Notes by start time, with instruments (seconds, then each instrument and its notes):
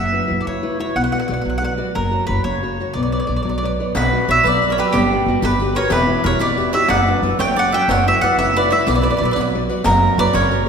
Already playing: upright bass F#1, nylon-string guitar F#3, mandolin E5
0.12 nylon-string guitar E4 F#4 B4
0.27 upright bass F#1, nylon-string guitar E4 F#4 B4
0.41 mandolin D5
0.45 upright bass F#1, nylon-string guitar C#3, mandolin C#5
0.63 nylon-string guitar E4 F#4 B4
0.79 nylon-string guitar E4 F#4 B4, mandolin C#5
0.96 upright bass B1, nylon-string guitar B3, mandolin F#5
1.04 mandolin F#5
1.12 nylon-string guitar F#4 B4 D5, mandolin F#5
1.20 mandolin F#5
1.28 upright bass B1, nylon-string guitar F#4 B4 D5, mandolin F#5
1.34 mandolin F#5
1.41 upright bass B1, nylon-string guitar F#3, mandolin F#5
1.50 mandolin F#5
1.58 nylon-string guitar F#4 B4, mandolin F#5
1.62 nylon-string guitar D5, mandolin F#5
1.77 nylon-string guitar F#4 B4 D5
1.95 upright bass F#1, nylon-string guitar F#3, mandolin A#4
2.11 nylon-string guitar F#4 A#4 C#5
2.27 upright bass F#1, nylon-string guitar F#4 A#4 C#5, mandolin B4
2.44 upright bass F#1, nylon-string guitar C#3, mandolin C#5
2.63 nylon-string guitar F#4 A#4 C#5
2.80 nylon-string guitar F#4 A#4 C#5
2.94 upright bass B1, nylon-string guitar B3, mandolin D5
3.03 mandolin D5
3.12 nylon-string guitar B4 C#5 D5, mandolin D5
3.20 mandolin D5
3.27 upright bass B1, nylon-string guitar B4 C#5 D5, mandolin D5
3.36 mandolin D5
3.43 upright bass B1, nylon-string guitar F#3, mandolin D5
3.49 mandolin D5
3.58 mandolin D5
3.63 nylon-string guitar B4 C#5 D5, mandolin D5
3.80 nylon-string guitar B4 C#5 D5
3.95 upright bass B1, nylon-string guitar B3, mandolin F#4 B4, riq
4.13 nylon-string guitar F#4 B4 D5
4.28 upright bass B1, nylon-string guitar F#4 B4 D5, mandolin C#5 E5
4.43 upright bass B1, nylon-string guitar F#3, mandolin B4 D5, riq
4.62 nylon-string guitar F#4 B4 D5, riq
4.70 mandolin A#4 C#5
4.78 nylon-string guitar F#4 B4 D5, mandolin G4 B4, riq
4.92 upright bass G1, nylon-string guitar G3, mandolin D4 G4, riq
5.12 nylon-string guitar G4 B4 F#5
5.26 upright bass G1, nylon-string guitar F#4 G4 B4
5.42 upright bass G1, nylon-string guitar D3, mandolin G4 B4, riq
5.59 nylon-string guitar F#4 G4 B4, riq
5.75 nylon-string guitar F#4 G4 B4, mandolin A#4 C#5, riq
5.90 upright bass E1, nylon-string guitar E3, mandolin G4 B4, riq
6.07 nylon-string guitar E4 F#4 G4
6.24 upright bass E1, nylon-string guitar E4 F#4 G4, mandolin A#4 C#5
6.39 upright bass E1, nylon-string guitar B2, mandolin B4 D5, riq
6.57 nylon-string guitar E4 F#4 G4, riq
6.73 nylon-string guitar E4 F#4 G4, mandolin C#5 E5, riq
6.88 upright bass F#1, nylon-string guitar F#3, mandolin D5 F#5, riq
7.06 nylon-string guitar D4 F#4 B4, riq
7.22 upright bass F#1, nylon-string guitar D4 F#4 B4, riq
7.39 upright bass F#1, nylon-string guitar F#3, mandolin C#5 G5, riq
7.56 nylon-string guitar C#4 F#4 A#4, mandolin D5 F#5
7.72 nylon-string guitar C#4 F#4 A#4, mandolin E5 G5
7.88 upright bass F#1, mandolin C#5 F#5, riq
8.07 nylon-string guitar E4 F#4 B4, mandolin C#5 E5
8.21 upright bass F#1, nylon-string guitar E4 F#4 B4, mandolin D5 F#5
8.38 upright bass F#1, nylon-string guitar C#3, mandolin C#5 E5, riq
8.56 nylon-string guitar E4 F#4 B4, mandolin B4 D5, riq
8.70 nylon-string guitar E4 F#4 B4, mandolin C#5 E5, riq
8.86 upright bass B1, nylon-string guitar B3, mandolin B4 D5, riq
8.95 mandolin B4 D5
9.02 nylon-string guitar F#4 B4 D5, mandolin B4 D5
9.10 mandolin B4 D5
9.17 nylon-string guitar F#4 B4 D5, mandolin B4 D5
9.21 upright bass B1, mandolin B4
9.25 mandolin D5
9.31 mandolin B4 D5
9.36 upright bass B1, nylon-string guitar F#3, riq
9.41 mandolin B4 D5
9.55 nylon-string guitar F#4 B4 D5
9.69 nylon-string guitar F#4 B4 D5, riq
9.84 upright bass F#1, nylon-string guitar F#3, mandolin F#4 A#4, riq
10.02 nylon-string guitar F#4 A#4 C#5
10.17 upright bass F#1, nylon-string guitar F#4 A#4 C#5, mandolin B4 D5
10.33 upright bass F#1, nylon-string guitar C#3, mandolin A#4 C#5, riq
10.50 nylon-string guitar F#4 A#4 C#5, riq
10.66 nylon-string guitar F#4